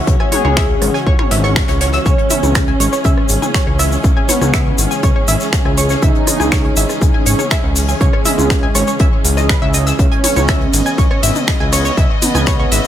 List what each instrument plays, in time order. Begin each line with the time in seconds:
Already playing: analog synth pad C#3 E3 G#3 F#4, string section C#4 C#5
0.07 analog synth bass C#2, kick, closed hi-hat
0.20 synth arpeggio sound G#5, cross-stick
0.32 analog polysynth G#4, synth arpeggio sound C#5, snare, closed hi-hat, open hi-hat, mid tom
0.45 analog synth bass C#2, synth arpeggio sound C#5, mid tom
0.57 synth arpeggio sound E5, finger snap, kick, snare, closed hi-hat
0.82 analog synth bass G#1, cross-stick, closed hi-hat, open hi-hat
0.94 synth arpeggio sound G#5, snare
1.06 analog synth bass C#2, synth arpeggio sound C#5, kick
1.19 synth arpeggio sound C#5, finger snap, mid tom
1.31 analog synth bass G#1, synth arpeggio sound E5, snare, closed hi-hat, open hi-hat
1.44 synth arpeggio sound C#6, cross-stick, snare
1.56 finger snap, kick, snare, closed hi-hat
1.68 analog synth bass C#2, synth arpeggio sound C#5, snare, closed hi-hat
1.81 synth arpeggio sound C#5, snare, closed hi-hat, open hi-hat
1.93 synth arpeggio sound E6, snare, closed hi-hat
2.06 analog synth bass C#2, analog synth pad C#4, analog polysynth C#4, synth arpeggio sound C#5, kick, closed hi-hat, shaker
2.18 synth arpeggio sound C#5, closed hi-hat
2.30 synth arpeggio sound E5, closed hi-hat, open hi-hat, mid tom, shaker
2.43 analog synth bass C#2, mid tom, shaker
2.52 string section G#4, finger snap, kick, cross-stick, snare, closed hi-hat, shaker
2.67 synth arpeggio sound G#5, closed hi-hat
2.80 analog synth bass G#1, synth arpeggio sound C#5, closed hi-hat, open hi-hat, shaker
2.93 synth arpeggio sound C#5, snare, shaker
3.04 analog synth bass C#2, synth arpeggio sound E5, kick, closed hi-hat, shaker
3.18 cross-stick
3.29 analog synth bass G#1, closed hi-hat, open hi-hat, shaker
3.42 synth arpeggio sound G#5, closed hi-hat, mid tom, shaker
3.54 synth arpeggio sound C#5, finger snap, kick, snare, closed hi-hat, shaker
3.67 analog synth bass C#2, synth arpeggio sound C#5
3.79 synth arpeggio sound E5, cross-stick, snare, open hi-hat, shaker
3.92 shaker
4.04 analog synth bass C#2, kick, closed hi-hat, shaker
4.17 synth arpeggio sound G#5
4.29 analog polysynth B3, synth arpeggio sound C#5, snare, closed hi-hat, open hi-hat, mid tom, shaker
4.41 analog synth bass C#2, synth arpeggio sound C#5, cross-stick, mid tom, shaker
4.54 synth arpeggio sound E5, finger snap, kick, snare, closed hi-hat, shaker
4.78 analog synth bass G#1, closed hi-hat, open hi-hat, shaker
4.91 synth arpeggio sound G#5, snare, shaker
5.03 analog synth bass C#2, synth arpeggio sound C#5, kick, cross-stick, closed hi-hat, shaker
5.16 synth arpeggio sound C#5
5.28 analog synth bass G#1, synth arpeggio sound E5, closed hi-hat, open hi-hat, shaker
5.40 snare, shaker
5.53 finger snap, kick, snare, closed hi-hat, shaker
5.65 analog synth bass C#2, synth arpeggio sound G#5, cross-stick
5.77 synth arpeggio sound C#5, closed hi-hat, open hi-hat, shaker
5.89 synth arpeggio sound C#5, snare, shaker
6.02 analog synth bass C#2, analog polysynth D#4, synth arpeggio sound E5, kick, closed hi-hat, shaker
6.15 closed hi-hat
6.27 cross-stick, closed hi-hat, open hi-hat, mid tom, shaker
6.40 analog synth bass C#2, synth arpeggio sound G#5, mid tom, shaker
6.52 synth arpeggio sound C#5, finger snap, kick, snare, closed hi-hat, shaker
6.64 synth arpeggio sound C#5, closed hi-hat
6.76 analog synth bass G#1, synth arpeggio sound E5, closed hi-hat, open hi-hat, shaker
6.89 cross-stick, snare, shaker
7.02 analog synth bass C#2, kick, closed hi-hat, shaker
7.14 synth arpeggio sound G#5
7.26 analog synth bass G#1, synth arpeggio sound C#5, closed hi-hat, open hi-hat, shaker
7.39 synth arpeggio sound C#5, closed hi-hat, mid tom, shaker
7.50 synth arpeggio sound E5, finger snap, kick, cross-stick, snare, closed hi-hat, shaker
7.64 analog synth bass C#2
7.75 snare, open hi-hat, shaker
7.89 synth arpeggio sound G#5, shaker
8.01 analog synth bass C#2, synth arpeggio sound C#5, kick, closed hi-hat, shaker
8.13 synth arpeggio sound C#5, cross-stick
8.25 analog polysynth G#3, synth arpeggio sound E5, snare, closed hi-hat, open hi-hat, mid tom, shaker
8.38 analog synth bass C#2, mid tom, shaker
8.50 finger snap, kick, snare, closed hi-hat, shaker
8.63 synth arpeggio sound G#5
8.74 analog synth bass G#1, synth arpeggio sound C#5, cross-stick, closed hi-hat, open hi-hat, shaker
8.87 synth arpeggio sound C#5, snare, shaker
8.99 analog synth bass C#2, synth arpeggio sound E5, kick, closed hi-hat, shaker
9.25 analog synth bass C#2, closed hi-hat, open hi-hat, shaker
9.37 synth arpeggio sound D#5, cross-stick, snare, shaker
9.49 synth arpeggio sound B4, finger snap, kick, snare, closed hi-hat, shaker
9.62 analog synth bass C#2, synth arpeggio sound E5
9.74 synth arpeggio sound D#5, closed hi-hat, open hi-hat, shaker
9.87 synth arpeggio sound E6, snare, shaker
9.99 analog synth bass C#2, analog synth pad B3, analog polysynth C#4, kick, closed hi-hat, shaker
10.12 synth arpeggio sound G#5, closed hi-hat
10.24 synth arpeggio sound C#5, closed hi-hat, open hi-hat, mid tom, ride, shaker
10.36 analog synth bass C#2, synth arpeggio sound C#5, mid tom, shaker
10.45 string section D#5, synth arpeggio sound E5, finger snap, kick, cross-stick, snare, closed hi-hat, shaker
10.61 closed hi-hat
10.73 analog synth bass G#1, closed hi-hat, open hi-hat, ride, shaker
10.86 synth arpeggio sound G#5, snare, shaker
10.98 analog synth bass C#2, synth arpeggio sound C#5, kick, closed hi-hat, shaker
11.11 synth arpeggio sound C#5, cross-stick
11.23 analog synth bass G#1, synth arpeggio sound E5, closed hi-hat, open hi-hat, ride, shaker
11.35 closed hi-hat, mid tom, shaker
11.47 finger snap, kick, snare, closed hi-hat, shaker
11.60 analog synth bass C#2, synth arpeggio sound G#5
11.72 synth arpeggio sound C#5, cross-stick, snare, open hi-hat, ride, shaker
11.85 synth arpeggio sound C#5, shaker
11.97 analog synth bass C#2, synth arpeggio sound E5, kick, closed hi-hat, shaker
12.22 analog polysynth B3, snare, closed hi-hat, open hi-hat, mid tom, ride, shaker
12.35 analog synth bass C#2, synth arpeggio sound G#5, cross-stick, mid tom, shaker
12.46 synth arpeggio sound C#5, finger snap, kick, snare, closed hi-hat, shaker
12.60 synth arpeggio sound C#5
12.72 analog synth bass G#1, synth arpeggio sound E5, closed hi-hat, open hi-hat, ride, shaker